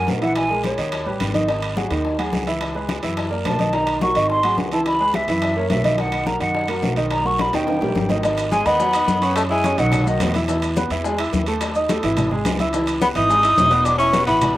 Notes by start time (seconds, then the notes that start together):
Already playing: F#3 F#4 A#4
0.07 A#1, high bongo, low bongo, high conga, low timbale, short guiro
0.21 E3 E4 E5 F#5, high conga, high timbale, short guiro
0.36 G#5, high bongo, high conga, high timbale, long guiro
0.50 G#3 G#4 A#4, high bongo, high conga
0.64 C#5, high bongo, high conga, high timbale, short guiro
0.78 D#2 D#3 D#4 D#5, high bongo, high conga, high timbale, short guiro
0.92 high bongo, high conga, high timbale
1.06 A1 G3 G4 B4, high bongo, high conga
1.20 G#1, high bongo, low bongo, high conga, high timbale, short guiro
1.34 D#3 D#4 D#5, high conga, high timbale, short guiro
1.48 D#3 D#4 D#5, high bongo, high conga, high timbale, long guiro
1.62 high bongo, high conga, high timbale
1.76 F#3 F#4 G#4, high bongo, high conga, short guiro
1.90 D#2 D#3 D#4 D#5, high bongo, high conga, high timbale, short guiro
2.05 high bongo, high conga, long guiro
2.18 F#3 F#4 G#4, high bongo, high conga, high timbale
2.32 C#2, high bongo, low bongo, high conga, short guiro
2.46 E3 E4 E5, high conga, high timbale, short guiro
2.61 high bongo, high conga, high timbale
2.75 G#3 G#4 B4, high bongo, high conga
2.89 high bongo, high conga, high timbale, short guiro
3.03 F#2 E3 E4 E5, high bongo, high conga, high timbale, short guiro
3.17 high bongo, high conga, high timbale, long guiro
3.30 A#3 A#4 D5, high bongo, high conga
3.45 B1 A5, high bongo, low bongo, high conga, high timbale, low timbale, short guiro
3.59 D#3 D#4 D#5, high conga, high timbale, short guiro
3.73 D#3 D#4 D#5 A#5, high bongo, high conga, high timbale, long guiro
3.87 high bongo, high conga, high timbale
4.01 F#3 F#4 A#4 C#6, high bongo, high conga, short guiro
4.15 G#1 D#3 D#4 D#5, high bongo, high conga, high timbale, short guiro
4.30 C6, high bongo, high conga, long guiro
4.43 F#3 F#4 G#4, high bongo, high conga, high timbale
4.57 C#2, high bongo, low bongo, high conga, short guiro
4.72 E3 E4 E5 A5, high conga, high timbale, short guiro
4.86 B5, high bongo, high conga, high timbale, long guiro
5.00 G#3 G#4 B4, high bongo, high conga
5.14 E5, high bongo, high conga, high timbale, short guiro
5.28 F#2 E3 E4 E5, high bongo, high conga, high timbale, short guiro
5.42 high bongo, high conga, high timbale, long guiro
5.56 A#3 A#4 C#5, high bongo, high conga
5.70 B1 E5, high bongo, low bongo, high conga, high timbale, low timbale, short guiro
5.84 D#3 D#4 D#5, high conga, high timbale, short guiro
5.98 D#3 D#4 D#5 F#5, high bongo, high conga, high timbale
6.12 high bongo, high conga, high timbale
6.26 F#3 F#4 A#4 A#5, high bongo, high conga, short guiro
6.40 F#2 D#3 D#4 D#5 F#5, high bongo, high conga, high timbale, short guiro
6.54 high bongo, high conga, long guiro
6.68 F#3 F#4 A#4, high bongo, high conga, high timbale
6.82 B1, high bongo, low bongo, high conga, low timbale, short guiro
6.96 D#3 D#4 D#5, high conga, high timbale, short guiro
7.11 A#5, high bongo, high conga, high timbale, long guiro
7.24 F#3 F#4 A#4 C#6, high bongo, high conga
7.39 B5, high bongo, high conga, high timbale, short guiro
7.53 D#2 D#3 D#4 D#5 G5, high bongo, high conga, high timbale, short guiro
7.67 low bongo, high conga, high timbale, long guiro
7.81 A#1 G3 G4 A#4, low bongo, high conga, low timbale
7.95 G#1, low bongo, high conga, short guiro
8.09 D#3 D#4 D#5, low bongo, high conga, low timbale, short guiro
8.23 D#3 D#4 D#5, high bongo, high conga, high timbale, long guiro, maracas
8.38 high bongo, high conga, high timbale, maracas
8.52 G#3 G#4 G#5, high bongo, high conga, short guiro, maracas
8.65 D#2 D#3 B3 D#4 D#5 B5, high bongo, high conga, high timbale, short guiro, maracas
8.80 F#3 F#4 F#5, high bongo, high conga, long guiro, maracas
8.93 D#4 D#5 D#6, high bongo, high conga, high timbale, maracas
9.07 F#2, high bongo, low bongo, high conga, short guiro, maracas
9.22 C#4 C#5 C#6, high conga, high timbale, short guiro, maracas
9.36 A3 A5, high bongo, high conga, high timbale, long guiro, maracas
9.50 G#3 E4 E5 G#5 E6, high bongo, high conga
9.64 C#4 C#5 C#6, high bongo, high conga, high timbale, short guiro, maracas
9.78 B1 D#3 F#3 D#4 D#5 F#5, high bongo, high conga, high timbale, short guiro, maracas
9.92 high bongo, high conga, low conga, high timbale, long guiro, maracas
10.06 D#3 F#3 F#4 D#5 F#5, high bongo, maracas
10.20 E2, high bongo, low bongo, high conga, high timbale, low timbale, short guiro, maracas
10.34 E4 E5 E6, high conga, high timbale, short guiro, maracas
10.48 E3 E4 E5, high bongo, high conga, high timbale, long guiro, maracas
10.62 high bongo, high conga, high timbale, maracas
10.76 B3 B4 B5, high bongo, high conga, short guiro, maracas
10.90 E2 E3 E4 E5, high bongo, high conga, high timbale, short guiro, maracas
11.04 G#3 G#4 G#5, high bongo, high conga, maracas
11.19 E4 E5 E6, high bongo, high conga, high timbale
11.33 D#2, high bongo, low bongo, high conga, short guiro, maracas
11.46 A3 A4 A5, high conga, high timbale, short guiro, maracas
11.61 high bongo, high conga, high timbale, long guiro, maracas
11.75 D#4 D#5 D#6, high bongo, high conga, maracas
11.89 A3 A4 A5, high bongo, high conga, high timbale, short guiro, maracas
12.03 G#1 E3 E4 E5, high bongo, high conga, high timbale, short guiro, maracas
12.17 high bongo, high conga, low conga, high timbale, long guiro, maracas
12.31 G#3 G#4 G#5, high bongo, high conga, low conga
12.45 C#2, high bongo, low bongo, high conga, high timbale, low timbale, short guiro, maracas
12.59 E4 E5 E6, high conga, high timbale, short guiro, maracas
12.73 E3 E4 E5, high bongo, high conga, high timbale, long guiro, maracas
12.87 high bongo, high conga, high timbale, maracas
13.01 B3 B4 B5, high bongo, high conga, short guiro, maracas
13.15 G#1 E3 D#4 E4 E5 D#6, high bongo, high conga, high timbale, short guiro, maracas
13.29 G#3 G#4 G#5, high bongo, high conga, long guiro, maracas
13.43 E4 E5 E6, high bongo, high conga, high timbale, maracas
13.57 E1, high bongo, low bongo, high conga, low timbale, short guiro, maracas
13.71 B3 B4 B5, high conga, high timbale, short guiro, maracas
13.85 D4 D6, high bongo, high conga, high timbale, long guiro, maracas
13.98 C#4 E4 E5 C#6 E6, high bongo, high conga, maracas
14.13 B3 B4 B5, high bongo, high conga, high timbale, short guiro, maracas
14.26 A1 E3 B3 E4 E5 B5, high bongo, high timbale, short guiro, maracas
14.41 high bongo, high conga, low conga, high timbale, maracas